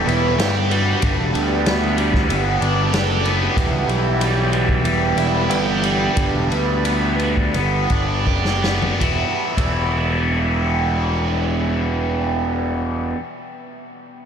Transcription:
0.00 1.02 E3 medium
0.00 0.70 G3 medium
0.00 0.38 G4 medium
0.06 0.39 E1 medium
0.06 0.35 E3 soft
0.06 0.35 G3 soft
0.06 0.35 B3 soft
0.06 1.02 E4 medium
0.06 0.51 B4 medium
0.06 ride medium
0.39 0.94 G1 medium
0.39 2.92 G4 medium
0.39 snare medium
0.39 ride medium
0.55 0.70 G4 medium
0.70 1.34 G3 medium
0.70 1.03 F#4 medium
0.70 ride medium
1.02 1.17 G1 medium
1.02 2.61 G2 medium
1.02 1.17 G4 medium
1.02 kick medium
1.02 ride medium
1.19 1.33 E1 medium
1.19 1.52 A4 medium
1.34 2.31 D2 medium
1.34 2.25 D3 soft
1.34 1.97 G3 medium
1.34 2.26 G3 soft
1.34 2.26 B3 medium
1.34 ride medium
1.48 1.66 G4 medium
1.66 2.29 B3 medium
1.66 1.83 F#4 medium
1.66 snare medium
1.66 ride medium
1.82 1.98 E4 medium
1.97 3.88 G3 medium
1.97 2.15 D4 medium
1.97 ride soft
2.14 2.44 E4 medium
2.14 kick medium
2.14 snare soft
2.29 2.57 G1 medium
2.29 3.24 B3 medium
2.29 ride medium
2.61 2.93 G1 medium
2.61 2.90 D3 soft
2.61 2.90 G3 soft
2.61 2.91 B3 soft
2.61 3.57 D4 medium
2.61 ride soft
2.93 3.48 F#1 medium
2.93 5.49 G4 medium
2.93 3.09 B4 medium
2.93 snare medium
2.93 ride medium
3.06 3.37 A4 medium
3.24 4.20 B3 medium
3.24 ride soft
3.40 3.70 G4 medium
3.54 3.71 E1 medium
3.54 5.17 E2 medium
3.54 6.12 E3 soft
3.54 6.12 G3 soft
3.54 6.13 B3 medium
3.54 kick medium
3.54 ride medium
3.72 3.86 C#2 medium
3.72 3.87 F#4 medium
3.87 4.86 B1 medium
3.87 4.51 E3 medium
3.87 4.49 G4 medium
3.87 ride soft
4.21 4.84 G3 medium
4.21 ride medium
4.52 6.16 E3 medium
4.52 ride soft
4.69 kick medium
4.84 5.12 E1 medium
4.84 5.83 G3 medium
4.84 ride medium
5.16 5.49 E1 medium
5.16 6.16 E4 medium
5.16 ride soft
5.48 6.07 G1 medium
5.48 8.26 G4 medium
5.48 5.65 B4 medium
5.48 ride medium
5.65 5.99 G4 medium
5.83 6.50 G3 medium
5.83 ride medium
6.00 6.35 G4 medium
6.16 6.32 G1 medium
6.16 7.90 G2 medium
6.16 7.15 D3 soft
6.16 7.15 G3 soft
6.16 7.16 B3 soft
6.16 kick medium
6.16 ride medium
6.33 6.48 E1 medium
6.33 6.50 A4 medium
6.50 7.56 D2 medium
6.50 7.20 G3 medium
6.50 7.16 B4 medium
6.50 ride soft
6.85 7.54 B3 medium
6.85 ride medium
7.20 9.00 G3 medium
7.20 ride soft
7.37 kick medium
7.54 7.85 G1 medium
7.54 8.61 B3 medium
7.54 ride medium
7.90 8.27 G1 medium
7.90 9.00 D4 medium
7.90 kick medium
7.90 ride soft
8.26 8.90 F#1 medium
8.26 9.00 G4 medium
8.26 kick soft
8.45 snare soft
8.62 9.00 B3 medium
8.62 snare medium
8.82 floor tom medium
8.99 9.22 E1 medium
8.99 9.55 E2 medium
8.99 9.56 B2 medium
8.99 9.57 E3 medium
8.99 9.57 G3 medium
8.99 9.58 B3 medium
8.99 kick medium
8.99 ride medium
9.03 9.59 E4 medium
9.55 13.13 E1 medium
9.55 13.14 E2 medium
9.55 13.16 B2 medium
9.55 13.16 E3 medium
9.55 13.17 G3 medium
9.55 13.18 B3 medium
9.55 kick medium
9.55 ride medium
9.59 13.19 E4 medium

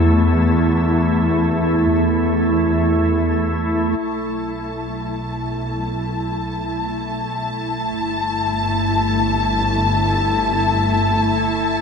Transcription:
0.00 3.94 E2 medium
0.00 3.97 A3 medium
0.00 3.98 E4 medium
3.98 7.88 B1 medium
3.98 11.81 A3 medium
3.98 11.81 E4 medium
3.98 11.81 A5 medium
7.93 11.81 G1 medium

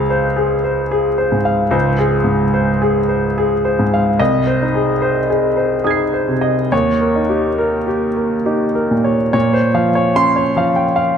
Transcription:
0.00 1.69 C#2 medium
0.00 0.27 G#4 soft
0.00 0.10 C5 medium
0.00 1.45 F5 medium
0.10 0.55 C5 medium
0.36 0.81 G#4 medium
0.64 1.08 C5 soft
0.91 1.35 G#4 medium
1.18 1.62 C5 soft
1.32 1.98 G#2 soft
1.45 1.89 F5 medium
1.71 4.14 C#2 medium
1.71 2.16 C5 medium
1.99 2.43 G#4 medium
2.24 2.70 G#2 soft
2.54 2.98 C5 medium
2.82 3.26 G#4 medium
3.09 3.53 C5 soft
3.38 3.82 G#4 medium
3.65 4.09 C5 soft
3.79 4.20 G#2 medium
3.94 4.20 F5 medium
4.20 6.68 C2 medium
4.20 4.63 D#5 medium
4.47 4.90 C5 medium
4.62 5.27 D#4 soft
4.75 5.18 G#4 soft
5.02 5.46 C5 medium
5.30 5.74 G#4 soft
5.57 6.02 C5 soft
5.84 6.54 D#4 soft
5.84 6.31 G#4 soft
5.84 6.67 D#6 soft
5.84 6.69 G#6 soft
5.91 6.71 C7 soft
6.14 6.60 C5 soft
6.28 6.72 C3 soft
6.41 6.71 D#5 soft
6.72 9.31 D#2 medium
6.72 7.19 C#5 medium
7.01 7.48 A#4 soft
7.16 7.86 D#4 soft
7.29 7.77 G4 soft
7.58 8.06 A#4 soft
7.87 8.35 G4 soft
8.16 8.64 A#4 soft
8.46 9.17 D#4 soft
8.46 8.93 G4 soft
8.75 9.22 A#4 soft
8.91 9.32 A#2 soft
9.04 9.32 C#5 soft
9.33 11.18 A#2 medium
9.33 9.67 C#5 medium
9.53 9.88 C5 medium
9.74 10.42 F3 medium
9.74 10.09 F5 medium
9.95 10.29 C#5 medium
10.16 10.83 C#4 medium
10.16 10.50 C6 medium
10.36 10.70 C#5 medium
10.57 11.18 F3 medium
10.57 10.91 F5 medium
10.76 10.98 G5 soft
10.96 11.18 F5 medium

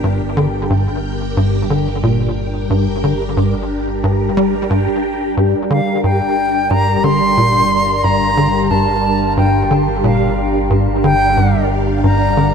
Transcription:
0.00 5.34 G1 medium
0.00 0.21 G2 medium
0.00 12.54 G3 medium
0.00 12.54 D4 medium
0.00 12.54 G4 medium
0.00 12.54 A#4 medium
0.00 7.00 G5 medium
0.37 0.47 D3 medium
0.70 0.88 G2 medium
1.37 1.63 G2 medium
1.70 1.88 D3 medium
2.03 2.30 A#2 medium
2.70 2.88 G2 medium
3.04 3.14 D3 medium
3.37 3.54 G2 medium
4.04 4.30 G2 medium
4.37 4.55 G3 medium
4.70 4.88 G2 medium
5.37 12.54 G1 medium
5.37 5.55 G2 medium
5.70 5.81 D3 medium
5.70 6.01 F5 medium
6.04 6.21 G2 medium
6.04 6.72 G5 loud
6.70 6.97 G2 medium
6.70 7.05 A#5 loud
6.98 12.54 F5 medium
7.04 7.21 D3 medium
7.04 8.06 C6 loud
7.38 7.63 A#2 medium
8.04 8.21 G2 medium
8.04 8.72 A#5 loud
8.37 8.48 D3 medium
8.71 8.88 G2 medium
8.71 9.37 A5 medium
9.37 9.63 G2 medium
9.37 9.74 G5 medium
9.71 9.88 D3 medium
10.04 10.30 A#2 medium
10.04 10.50 F5 medium
10.70 10.88 G2 medium
11.04 11.14 D3 medium
11.04 11.66 G5 loud
11.37 11.55 G2 medium
12.04 12.30 G2 medium
12.04 12.54 A#5 loud
12.37 12.54 D3 medium

